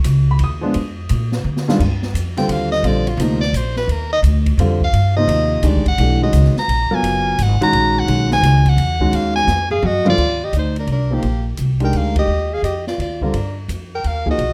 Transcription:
0.04 C#2, hi-hat pedal, ride
0.31 B5
0.39 D#2, ride
0.44 D#6
0.61 F3 G#3 B3 D4
0.74 F2, ride
1.09 A#2, hi-hat pedal, ride
1.32 snare
1.44 D3
1.57 snare
1.68 G2 D#3 G#3 D4 F4, snare
1.80 G2, kick, crash
2.02 snare
2.14 F2, hi-hat pedal, ride
2.37 D3 G3 C4 F4 G5, snare, ride
2.48 D#2 F5, ride
2.72 D#5, snare
2.83 A#1 D3 G3 C4 F4, ride
2.87 D5
3.07 F4, ride
3.17 D2 C3 F3 A#3 D#4, hi-hat pedal, ride
3.23 A#4
3.41 D5, snare
3.53 A#1, hi-hat pedal, ride
3.57 C5
3.76 B4, snare
3.87 D#2 A#4, ride
4.13 D#5
4.22 D2, hi-hat pedal, ride
4.46 kick, ride
4.57 F2 D3 G3 C4 F4, ride
4.81 F5, kick
4.93 G2, ride
5.16 C3 F3 A#3 D#4 D#5
5.27 D#2, ride
5.63 D2 D#3 G#3 D4 G4, hi-hat pedal, ride
5.67 D5
5.75 A#1
5.86 G1 F#5, kick, ride
5.98 B1 E3 A3 D4 G4, ride
6.22 D#3 G#3 C#4 F#4 D#5
6.32 C#2, hi-hat pedal, ride
6.44 snare
6.57 A#5, snare
6.68 A#1, ride
6.91 F#3 B3 F4 A#4, muted upright bass stroke
6.95 G#5
7.03 F#1, ride
7.38 G#1, hi-hat pedal, ride
7.43 F#5
7.61 D#3 G#3 C#4 F#4 A#5, muted upright bass stroke, ride
7.73 A#1, ride
7.99 F#5
8.07 B1 D#3 G#3 C#4 F#4, ride
8.31 G#5, snare
8.41 C#2, snare, hi-hat pedal, ride
8.66 F#5, kick, ride
8.77 E2, ride
9.00 D#3 G#3 C#4 F#4, kick
9.11 D#2 F5, ride
9.36 G#5, snare
9.47 F2, snare, hi-hat pedal
9.70 G#4 F5, floor tom
9.82 F#2 F#4, mid tom
9.86 D#5
10.05 D#2 D3 G3 C4 F4, mid tom
10.10 D5
10.18 D#2, kick, crash
10.44 G4 D#5
10.53 D2 D#4, hi-hat pedal, ride
10.59 C5
10.76 D4 A#4, ride
10.87 C2, ride
10.92 D4 A#4
11.11 C3 F3 A#3 D#4 G4
11.22 A#1, ride
11.57 C2, hi-hat pedal, ride
11.80 G#3 D4 D#4 G4 A#4, ride
11.85 G5
11.93 D2, ride
11.97 A#4 F5
12.16 G4 D#5, kick, ride
12.28 D#2
12.53 G#4 F5
12.62 F2 G4 D#5, hi-hat pedal, ride
12.87 F4 D5, snare
12.98 D#2 F4 D5, ride
13.21 D3 G3 C4 D4 F4 A#4, kick
13.34 G2, ride
13.68 F2, hi-hat pedal, ride
13.95 A#4 G5
14.04 D#2 A#4 F5, ride
14.26 F3 A#3 D#4 G#4, kick
14.31 F#4 D#5
14.38 B1, ride

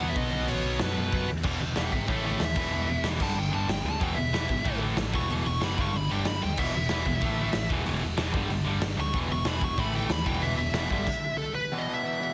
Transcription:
0.00 E2 B2 F#3 B3
0.09 E5
0.15 B1 D#5, kick, open hi-hat
0.33 B1
0.47 A1 B2 F#3 B3 C#5, open hi-hat
0.65 B1
0.79 F#2 B4, snare, open hi-hat
0.98 F#2
1.12 F#2, kick, open hi-hat
1.30 E2
1.43 E1 E2 B2 E3, kick, crash
1.60 E1 E2 B2 E3
1.76 E1 E2 B2 E3 E5 G5, snare, open hi-hat
1.92 G#1 E2 B2 E3 E5 G5, kick
2.07 A1 A2 E3 A3 C#5 E5, kick, open hi-hat
2.23 A2 E3 A3 C#5 E5
2.40 D#2 A2 E3 A3, snare, open hi-hat
2.44 E5
2.55 E1 E2 B2 E3, kick, crash
2.71 E1 E2 B2 E3
2.88 E1 E2 B2 E3
3.04 E1 E2 B2 E3, snare, open hi-hat
3.19 G1 G2 D3 G3 A5, kick, crash
3.36 G1 G2 D3 G3 G5
3.52 G1 G2 D3 G3 A5
3.68 G1 G2 D3 G3 G5, snare, open hi-hat
3.83 D2 G2 D3 G3 A5
4.00 E1 E2 B2 E3 G5, kick, open hi-hat
4.16 E1 E2 B2 E3 E5
4.32 E1 E2 B2 E3, snare, open hi-hat
4.49 G#1 E2 B2 E3, kick
4.64 A1 A2 E3 A3, kick, open hi-hat
4.80 A2 E3 A3
4.97 A1 A2 E3 A3, snare, open hi-hat
5.12 E1 E2 B2 E3 C#6, kick
5.29 E1 E2 B2 E3, open hi-hat
5.45 E1 E2 B2 E3 C#6
5.61 F#1 E2 B2 E3 B5, snare, open hi-hat
5.78 G1 G2 D3 G3 C#6, kick
5.93 G1 G2 D3 G3 B5, open hi-hat
6.10 G1 G2 D3 G3 G5
6.25 G1 G2 D3 G3 B5, snare, open hi-hat
6.43 D#2 G2 D3 G3 G5
6.57 E1 E2 B2 E3 E5, kick, crash
6.74 E1 E2 B2 E3 E5
6.89 E1 E2 B2 E3, snare, open hi-hat
7.06 E1 E2 B2 E3, kick
7.20 A1 A2 E3 A3, kick, open hi-hat
7.39 A2 E3 A3
7.43 A3
7.53 A1 A2 E3 A3, snare, open hi-hat
7.70 E1 E2 B2 E3, kick
7.85 E1 E2 B2 E3, open hi-hat
8.01 E1 E2 B2 E3
8.18 E1 E2 B2 E3, snare, open hi-hat
8.33 G1 G2 D3 G3, kick
8.50 G1 G2 D3 G3, open hi-hat
8.66 G1 G2 D3 G3
8.82 G1 G2 D3 G3, snare, open hi-hat
8.97 D2 G2 D3 G3 C#6
9.13 E1 E2 B2 E3, kick, open hi-hat
9.29 E1 E2 B2 E3 C#6
9.45 E1 E2 B2 E3 B5, snare, open hi-hat
9.60 E1 E2 B2 E3, kick
9.65 C#6
9.77 A1 A2 E3 A3 B5, kick, open hi-hat
9.92 A2 E3 A3 G5
10.08 D#2 A2 E3 A3 B5, snare, open hi-hat
10.25 E1 E2 B2 E3 G5, kick
10.42 E1 E2 B2 E3 E5, open hi-hat
10.57 E1 E2 B2 E3 E5
10.72 E1 B2 E3, snare, open hi-hat
10.77 E2
10.89 G1 G2 D3 G3, kick
11.07 kick, crash
11.38 A4
11.55 B4
11.72 E2 B2 E3
11.78 D#5
11.87 E2 B2 E3
11.94 E5
12.03 E2 B2 E3
12.20 E2 B2 E3

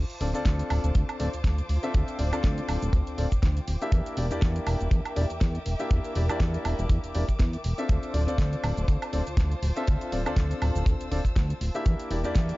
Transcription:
Already playing: F4 C5 A5 D6
0.10 closed hi-hat, cabasa
0.20 D1 C4 D4 F4 A4 D5, open hi-hat
0.33 D2 C4 D4 F4 A4 D5, closed hi-hat, cabasa
0.45 D2, kick, snare, closed hi-hat, cabasa
0.59 closed hi-hat, cabasa
0.70 D1, open hi-hat, high woodblock
0.84 D1, closed hi-hat, cabasa
0.95 D2, kick, closed hi-hat, cabasa
1.09 closed hi-hat, cabasa, high woodblock
1.19 D1 C4 D4 F4 A4 D5, open hi-hat
1.34 D2, closed hi-hat, cabasa
1.44 D2, kick, snare, closed hi-hat, cabasa
1.58 closed hi-hat, cabasa
1.69 D1, open hi-hat
1.83 C4 D4 F4 A4 E5, closed hi-hat, cabasa
1.94 D2 G5, kick, closed hi-hat, cabasa
2.08 closed hi-hat, cabasa
2.18 D1 C4 D4 F4 A4 D5, open hi-hat
2.32 D2 C4 D4 F4 A4 D5, closed hi-hat, cabasa, high woodblock
2.44 D2, kick, snare, closed hi-hat, cabasa
2.58 closed hi-hat, cabasa
2.69 D1, open hi-hat, high woodblock
2.82 D1, closed hi-hat, cabasa
2.93 D2, kick, closed hi-hat, cabasa
3.07 D1, closed hi-hat, cabasa
3.17 D1 C4 D4 F4 A4 D5, open hi-hat
3.32 D2, kick, closed hi-hat, cabasa
3.43 D2, kick, snare, closed hi-hat, cabasa
3.57 closed hi-hat, cabasa
3.68 D1, open hi-hat
3.81 A#3 D4 E4 G4 E5, closed hi-hat, cabasa
3.92 E2 A#4 E5 D6, kick, closed hi-hat, cabasa
4.06 closed hi-hat, cabasa
4.17 E1 A#3 D4 E4 G4 D5, open hi-hat
4.30 E2 A#3 D4 E4 G4 D5, closed hi-hat, cabasa
4.42 E2, kick, snare, closed hi-hat, cabasa
4.56 closed hi-hat, cabasa
4.67 E1, open hi-hat, high woodblock
4.81 E1, closed hi-hat, cabasa
4.91 E2, kick, closed hi-hat, cabasa
5.05 closed hi-hat, cabasa, high woodblock
5.16 E1 A#3 D4 E4 G4 D5, open hi-hat
5.30 E2, closed hi-hat, cabasa
5.41 E2, kick, snare, closed hi-hat, cabasa
5.55 closed hi-hat, cabasa
5.66 E1, open hi-hat
5.79 A#3 D4 E4 G4 E5, closed hi-hat, cabasa
5.91 E2, kick, closed hi-hat, cabasa
6.05 closed hi-hat, cabasa
6.15 E1 A#3 D4 E4 G4 D5, open hi-hat
6.28 E2 A#3 D4 E4 G4 D5, closed hi-hat, cabasa, high woodblock
6.40 E2, kick, snare, closed hi-hat, cabasa
6.54 closed hi-hat, cabasa
6.65 E1, open hi-hat, high woodblock
6.79 E1, closed hi-hat, cabasa
6.89 E2, kick, closed hi-hat, cabasa
7.04 E1, closed hi-hat, cabasa
7.14 E1 A#3 D4 E4 G4 D5, open hi-hat
7.29 E2, kick, closed hi-hat, cabasa
7.39 E2, kick, snare, closed hi-hat, cabasa
7.53 closed hi-hat, cabasa
7.64 E1, open hi-hat
7.78 C4 D4 F4 A4 E5, closed hi-hat, cabasa
7.89 D2 F4 C5 A5, kick, closed hi-hat, cabasa
8.03 closed hi-hat, cabasa
8.13 D1 C4 D4 F4 A4 D5, open hi-hat
8.27 D2 C4 D4 F4 A4 D5, closed hi-hat, cabasa
8.38 D2, kick, snare, closed hi-hat, cabasa
8.53 closed hi-hat, cabasa
8.64 D1, open hi-hat, high woodblock
8.77 D1, closed hi-hat, cabasa
8.88 D2, kick, closed hi-hat, cabasa
9.02 closed hi-hat, cabasa, high woodblock
9.12 D1 C4 D4 F4 A4 D5, open hi-hat
9.27 D2, closed hi-hat, cabasa
9.37 D2, kick, snare, closed hi-hat, cabasa
9.52 closed hi-hat, cabasa
9.63 D1, open hi-hat
9.76 C4 D4 F4 A4 E5, closed hi-hat, cabasa
9.87 D2 E6, kick, closed hi-hat, cabasa
10.01 closed hi-hat, cabasa
10.12 D1 C4 D4 F4 A4 D5, open hi-hat
10.25 D2 C4 D4 F4 A4 D5, closed hi-hat, cabasa, high woodblock
10.36 D2, kick, snare, closed hi-hat, cabasa
10.51 closed hi-hat, cabasa
10.62 D1, open hi-hat, high woodblock
10.76 D1, closed hi-hat, cabasa
10.86 D2, kick, closed hi-hat, cabasa
11.00 D1, closed hi-hat, cabasa
11.11 D1 C4 D4 F4 A4 D5, open hi-hat
11.25 D2, kick, closed hi-hat, cabasa
11.36 D2, kick, snare, closed hi-hat, cabasa
11.50 closed hi-hat, cabasa
11.61 D1, open hi-hat
11.75 A#3 D4 E4 G4 E5, closed hi-hat, cabasa
11.86 E2 A#4 E5 G5 D6, kick, closed hi-hat, cabasa
12.00 closed hi-hat, cabasa
12.10 E1 A#3 D4 E4 G4 D5, open hi-hat
12.24 E2 A#3 D4 E4 G4 D5, closed hi-hat, cabasa
12.35 E2, kick, snare, closed hi-hat, cabasa
12.49 closed hi-hat, cabasa

